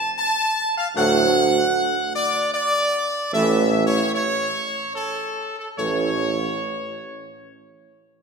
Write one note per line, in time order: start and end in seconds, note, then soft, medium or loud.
0.00 0.13 A5 loud
0.17 0.73 A5 loud
0.77 0.86 F5 loud
0.94 1.63 D2 loud
0.94 1.26 A2 medium
0.94 1.26 F#3 medium
0.94 1.25 A3 medium
0.94 1.25 A4 medium
0.94 2.11 F#5 loud
2.15 2.52 D5 loud
2.54 3.29 D5 loud
3.33 4.00 A1 loud
3.33 3.63 A2 medium
3.33 3.63 E3 medium
3.33 3.64 A3 medium
3.33 3.64 A4 medium
3.33 3.83 E5 loud
3.86 4.12 C#5 loud
4.14 4.92 C#5 loud
4.95 5.54 A4 loud
5.58 5.67 A4 medium
5.77 6.49 A1 medium
5.77 6.10 A2 medium
5.77 6.09 E3 medium
5.77 6.10 A3 medium
5.77 6.09 A4 medium
5.77 7.42 C#5 loud